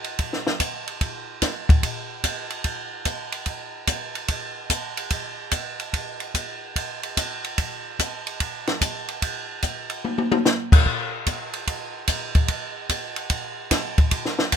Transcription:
0.04 ride
0.19 kick, ride
0.33 snare
0.47 snare
0.60 kick, hi-hat pedal, ride
0.87 ride
1.01 kick, ride
1.42 kick, snare, hi-hat pedal, ride
1.69 kick, ride
1.83 kick, ride
2.24 kick, hi-hat pedal, ride
2.50 ride
2.64 kick, ride
3.05 kick, hi-hat pedal, ride
3.32 ride
3.46 kick, ride
3.87 kick, hi-hat pedal, ride
4.15 ride
4.28 kick, ride
4.70 kick, hi-hat pedal, ride
4.97 ride
5.10 kick, ride
5.51 kick, hi-hat pedal, ride
5.79 ride
5.93 kick, ride
6.20 ride
6.34 kick, hi-hat pedal, ride
6.76 kick, ride
7.03 ride
7.17 kick, hi-hat pedal, ride
7.44 ride
7.58 kick, ride
7.99 kick, hi-hat pedal, ride
8.27 ride
8.40 kick, ride
8.67 snare, ride
8.81 kick, hi-hat pedal, ride
9.08 ride
9.22 kick, ride
9.62 kick, hi-hat pedal, ride
9.90 ride
10.05 high tom
10.18 high tom
10.32 high tom
10.45 snare, hi-hat pedal
10.72 kick, crash
10.86 kick
11.26 kick, hi-hat pedal, ride
11.53 ride
11.67 kick, ride
12.07 kick, hi-hat pedal, ride
12.35 kick, ride
12.48 kick, ride
12.89 kick, hi-hat pedal, ride
13.16 ride
13.30 kick, ride
13.71 kick, snare, hi-hat pedal, ride
13.98 kick, ride
14.11 kick, ride
14.25 snare
14.39 snare
14.52 kick, hi-hat pedal, ride

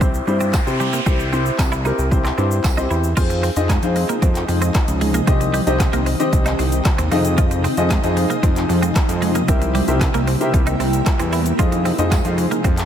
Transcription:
Already playing: C2, noise sweep
0.01 C4 E4 G4 C5, kick, shaker
0.14 shaker
0.27 G2 C4 E4 G4 C5, muted clean electric guitar stroke, shaker
0.41 C4, shaker
0.53 muted clean electric guitar stroke, kick, snare, clap, tambourine, shaker
0.67 C3 C4 E4 G4 C5, shaker
0.80 G3, shaker
0.93 A#3, shaker
1.06 C2 C4 E4 G4 C5, kick, shaker
1.19 muted clean electric guitar stroke, shaker
1.32 C4 E4 G4 C5, shaker
1.46 shaker
1.59 C2, muted clean electric guitar stroke, kick, snare, clap, tambourine, shaker
1.72 E4, shaker
1.85 C4 D#4 E4 G4 A#4, shaker
1.98 C2, shaker
2.11 C4 E4 G4 C5, muted clean electric guitar stroke, kick, shaker
2.25 C4, clap, shaker
2.38 G2 C4 E4 G4 C5, shaker
2.51 shaker
2.64 C2, muted clean electric guitar stroke, kick, snare, clap, tambourine, shaker
2.77 C4 D#4 E4 G4 C5, shaker
2.91 E2 E4, shaker
3.04 shaker
3.17 F2 C3 F3 G#3 C4 D#4 F4 G#4 C5, kick, closed hi-hat, crash, shaker
3.30 muted clean electric guitar stroke, closed hi-hat, shaker
3.43 C4, open hi-hat, shaker
3.56 F2 C4 D#4 F4 G#4 D#5, closed hi-hat, shaker
3.69 G#3, kick, snare, clap, closed hi-hat, shaker
3.83 F2 C4 D#4 F4 G#4 C5, closed hi-hat, shaker
3.96 muted clean electric guitar stroke, open hi-hat, shaker
4.09 A#3, closed hi-hat, shaker
4.22 F2 C4, kick, closed hi-hat, shaker
4.35 clap, closed hi-hat, shaker
4.49 F2, muted clean electric guitar stroke, open hi-hat, shaker
4.62 C4, closed hi-hat, shaker
4.75 muted clean electric guitar stroke, kick, snare, clap, closed hi-hat, shaker
4.88 C#2, closed hi-hat, shaker
5.01 G#3, open hi-hat, shaker
5.14 A#3, closed hi-hat, shaker
5.27 C2 D#3 G3 C4 D#4 G4 C5 D#5, kick, closed hi-hat, shaker
5.41 muted clean electric guitar stroke, closed hi-hat, shaker
5.54 G3, open hi-hat, shaker
5.67 C2 C4 D#4 G4 C5 D#5, closed hi-hat, shaker
5.80 muted clean electric guitar stroke, kick, snare, clap, closed hi-hat, shaker
5.93 C2 A#3, closed hi-hat, shaker
6.06 C4, open hi-hat, shaker
6.19 C4 D#4 G4 C5 D#5, closed hi-hat, shaker
6.33 C2, muted clean electric guitar stroke, kick, closed hi-hat, shaker
6.46 D#4, clap, closed hi-hat, shaker
6.59 C2 C4, open hi-hat, shaker
6.72 closed hi-hat, shaker
6.85 muted clean electric guitar stroke, kick, snare, clap, closed hi-hat, shaker
6.98 D#2 C4, closed hi-hat, shaker
7.11 F2 F3 G#3 D#4 F4 G#4 C5 D#5, open hi-hat, shaker
7.25 closed hi-hat, shaker
7.38 F4, kick, closed hi-hat, shaker
7.51 muted clean electric guitar stroke, closed hi-hat, shaker
7.64 C4, open hi-hat, shaker
7.77 F2 D#4 F4 G#4 C5 D#5, closed hi-hat, shaker
7.90 G#3, kick, snare, clap, closed hi-hat, shaker
8.04 F2 D#4 F4 G#4 C5 D#5, closed hi-hat, shaker
8.17 muted clean electric guitar stroke, open hi-hat, shaker
8.30 A#3, closed hi-hat, shaker
8.43 F2 C4, kick, closed hi-hat, shaker
8.56 clap, closed hi-hat, shaker
8.69 F2, muted clean electric guitar stroke, open hi-hat, shaker
8.83 C4, closed hi-hat, shaker
8.96 muted clean electric guitar stroke, kick, snare, clap, closed hi-hat, shaker
9.09 F2, closed hi-hat, shaker
9.22 G#3, open hi-hat, shaker
9.35 A#3, closed hi-hat, shaker
9.48 C2 G3 A#3 C4 E4 G4 A#4 C5 E5, kick, closed hi-hat, shaker
9.62 muted clean electric guitar stroke, closed hi-hat, shaker
9.75 G3, open hi-hat, shaker
9.88 C2 E4 G4 A#4 C5 E5, closed hi-hat, shaker
10.01 muted clean electric guitar stroke, kick, snare, clap, closed hi-hat, shaker
10.14 C2 A#3, closed hi-hat, shaker
10.27 C4, open hi-hat, shaker
10.40 E4 G4 A#4 C5 E5, closed hi-hat, shaker
10.54 C2, muted clean electric guitar stroke, kick, closed hi-hat, shaker
10.67 D#4, closed hi-hat, shaker
10.80 C2 C4, open hi-hat, shaker
10.93 closed hi-hat, shaker
11.06 muted clean electric guitar stroke, kick, snare, clap, closed hi-hat, shaker
11.19 E2 C4, closed hi-hat, shaker
11.33 E4, open hi-hat, shaker
11.46 closed hi-hat, shaker
11.59 F2 C3 F3 G#3 D#4 F4 G#4 C5 D#5, kick, closed hi-hat, shaker
11.72 muted clean electric guitar stroke, closed hi-hat, shaker
11.85 C4, open hi-hat, shaker
11.98 F2 D#4 F4 G#4 C5 D#5, closed hi-hat, shaker
12.11 G#3, kick, snare, clap, closed hi-hat, tambourine, shaker
12.24 F2 D#4 F4 G#4 C5 F5, closed hi-hat, shaker
12.38 muted clean electric guitar stroke, open hi-hat, shaker
12.51 A#3, closed hi-hat, shaker
12.64 F2 C4, kick, closed hi-hat, shaker
12.78 clap, closed hi-hat, shaker

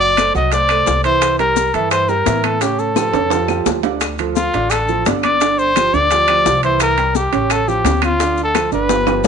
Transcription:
Already playing: F#1 F#3 F#4 F#5
0.01 D5, high conga, maracas
0.17 A3 A4 C5, high bongo, high conga, high timbale, claves, maracas
0.35 C2 F#3 F#4 D#5 F#5, high bongo, high conga, maracas
0.52 A3 A4 C5 D5, high bongo, high conga, high timbale, maracas
0.69 A3 A4 C5, high conga, high timbale, claves, maracas
0.86 C2, high bongo, low bongo, high conga, low timbale, maracas
1.04 E3 E4 C5 E5, high bongo, high conga, high timbale, maracas
1.22 high bongo, high conga, high timbale, claves, maracas
1.39 G3 G4 A#4, high conga, high timbale, maracas
1.56 high bongo, high conga, maracas
1.74 G2 E3 E4 A4 E5, high bongo, high conga, high timbale, maracas
1.91 C5, high bongo, high conga, high timbale, claves, maracas
2.08 G3 G4 A#4, high bongo, high conga, maracas
2.26 A2 E3 E4 E5, high bongo, low bongo, high conga, high timbale, maracas
2.44 A4, high bongo, high conga, high timbale, claves, maracas
2.61 C#3 C#4 G4 C#5, high bongo, high conga, high timbale, maracas
2.79 A4, high conga, maracas
2.96 F3 F4 G4, high bongo, high conga, high timbale, claves, maracas
3.13 F2 C#3 C#4 C#5, high bongo, high conga, high timbale, maracas
3.30 F3 F4 G4, high bongo, high conga, high timbale, maracas
3.48 F3 F4 G4, high conga, low timbale, claves, maracas
3.66 D2, high bongo, low bongo, high conga, low timbale, maracas
3.83 D3 D4 D5, high bongo, high conga, low timbale, maracas
4.01 high bongo, high conga, high timbale, claves, maracas
4.18 F3 F4 A4, high conga, high timbale, maracas
4.36 F4, high bongo, high conga, maracas
4.54 A1 D3 D4 D5, high bongo, high conga, high timbale, maracas
4.70 A4, high bongo, high conga, high timbale, claves, maracas
4.88 F3 F4 A4, high bongo, high conga, maracas
5.06 G1 D3 D4 D5, high bongo, low bongo, high conga, high timbale, low timbale, maracas
5.23 D5, high bongo, high conga, high timbale, claves, maracas
5.41 D3 D4 D5, high bongo, high conga, high timbale, maracas
5.59 C5, high conga, maracas
5.76 F3 F4 G4, high bongo, high conga, high timbale, claves, maracas
5.93 D2 D3 D4 D5, high bongo, high conga, maracas
6.10 F3 F4 G4, high bongo, high conga, high timbale, maracas
6.28 F3 F4 G4, high conga, high timbale, claves, maracas
6.45 C2, high bongo, low bongo, high conga, low timbale, maracas
6.63 E3 E4 C5 E5, high bongo, high conga, high timbale, maracas
6.80 A#4, high bongo, high conga, high timbale, claves, maracas
6.98 G3 G4 A#4, high conga, high timbale, maracas
7.15 G4, high bongo, high conga, maracas
7.32 A1 C#3 C#4 C#5, high bongo, high conga, high timbale, maracas
7.50 A4, high bongo, high conga, high timbale, claves, maracas
7.68 F3 F4 G4, high bongo, high conga, maracas
7.84 D2 C#3 C#4 C#5, high bongo, low bongo, high conga, high timbale, low timbale, maracas
8.02 F4, high bongo, high conga, high timbale, claves, maracas
8.20 D3 D4 D5, high bongo, high conga, high timbale, maracas
8.37 high conga, maracas
8.44 A4
8.55 F3 F4 A4, high bongo, high conga, high timbale, claves, maracas
8.72 G1 D3 D4 B4 D5, high bongo, high conga, maracas
8.89 F3 F4 G4, high bongo, high conga, high timbale, maracas
9.07 F3 F4 G4, high conga, high timbale, claves, maracas
9.24 C2, low conga, low timbale, maracas

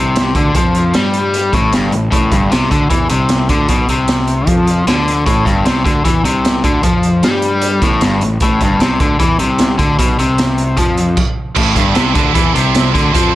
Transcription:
Already playing: C2 C3
0.16 snare, closed hi-hat
0.35 D2 D3, kick, closed hi-hat
0.55 F2 F3, kick, closed hi-hat
0.75 closed hi-hat
0.94 G2 G3, snare, closed hi-hat
1.13 closed hi-hat
1.34 closed hi-hat
1.53 A1 A2, kick, closed hi-hat
1.72 G1 G2, snare, closed hi-hat
1.92 A1 A2, closed hi-hat
2.12 A1 A2, kick, closed hi-hat
2.32 G1 G2, kick, closed hi-hat
2.51 C2 C3, snare, closed hi-hat
2.63 snare
2.71 D2 D3, kick, closed hi-hat
2.90 E2 E3, kick, closed hi-hat
3.09 C2 C3, closed hi-hat
3.29 snare, closed hi-hat
3.49 D2 D3, kick, closed hi-hat
3.68 B1 B2, kick, closed hi-hat
3.88 C2 C3, closed hi-hat
4.08 snare, closed hi-hat
4.19 snare
4.27 closed hi-hat
4.47 F2 F3, kick, closed hi-hat
4.67 closed hi-hat
4.87 D2 D3, snare, closed hi-hat
5.08 closed hi-hat
5.26 A1 A2, kick, closed hi-hat
5.45 G1 G2, kick, closed hi-hat
5.65 C2 C3, snare, closed hi-hat
5.85 D2 D3, kick, closed hi-hat
6.05 E2 E3, kick, closed hi-hat
6.23 C2 C3, closed hi-hat
6.45 snare, closed hi-hat
6.64 D2 D3, kick, closed hi-hat
6.83 F2 F3, kick, closed hi-hat
7.03 closed hi-hat
7.23 G2 G3, snare, closed hi-hat
7.34 snare
7.42 closed hi-hat
7.61 closed hi-hat
7.82 A1 A2, kick, snare, closed hi-hat
8.01 G1 G2, snare, closed hi-hat
8.21 A1 A2, closed hi-hat
8.40 A1 A2, kick, closed hi-hat
8.61 G1 G2, kick, closed hi-hat
8.80 C2 C3, snare, closed hi-hat
9.00 D2 D3, kick, closed hi-hat
9.20 E2 E3, kick, closed hi-hat
9.39 C2 C3, closed hi-hat
9.58 snare, closed hi-hat
9.78 D2 D3, kick, closed hi-hat
9.98 B1 B2, kick, closed hi-hat
10.19 C2 C3, closed hi-hat
10.38 snare, closed hi-hat
10.58 closed hi-hat
10.77 F2 F3, kick, closed hi-hat
10.97 closed hi-hat
11.17 kick, crash
11.55 A1 A2 C4 E4 A4, kick, crash
11.75 G1 G2, kick, closed hi-hat
11.95 C2 C3, snare, closed hi-hat
12.15 D2 D3, kick, closed hi-hat
12.34 E2 E3, kick, closed hi-hat
12.55 C2 C3, closed hi-hat
12.75 snare, closed hi-hat
12.94 D2 D3, kick, closed hi-hat
13.13 F2 F3 C4 E4 A4, kick, closed hi-hat

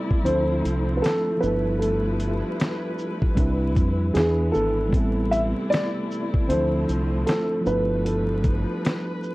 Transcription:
Already playing: C3 E3 G3 A3 B3 C4 E4 A4 D5
0.11 kick
0.23 D2 D3 F3 C4 D4 E4 C5, closed hi-hat
0.28 A4
0.65 C2, closed hi-hat, shaker
0.97 B4
1.02 A4, snare, closed hi-hat
1.07 clap
1.37 F3 B3 B4
1.41 G1 F3 G3 D4 E4 B4, shaker
1.48 A4
1.79 A4, closed hi-hat
2.20 closed hi-hat, shaker
2.60 snare, clap, closed hi-hat
2.99 shaker
3.22 kick
3.35 C2 C3 E3 G3 C4 D4 E4, kick, closed hi-hat
3.40 B4
3.76 F2, kick, closed hi-hat, shaker
4.13 E2 D3 E3 B3 D4 E4 G#4, snare, closed hi-hat
4.17 E4 B4, clap
4.52 G#1 A4, shaker
4.88 C3 G3 A3 B3
4.93 A1 C4, kick, closed hi-hat
4.97 E4 A4
5.31 E5, closed hi-hat, shaker
5.70 D5, closed hi-hat
5.74 snare, clap
6.11 shaker
6.34 kick
6.47 D2 D3 E3 F3 C4 D4 E4 C5, closed hi-hat
6.52 F3 A4
6.89 C2, closed hi-hat, shaker
7.27 A4, snare, clap, closed hi-hat
7.61 F3 B3
7.66 G1 F3 G3 D4 E4 B4, shaker
7.72 A4
8.05 A4, closed hi-hat
8.44 kick, closed hi-hat, shaker
8.85 snare, clap, closed hi-hat
9.23 shaker

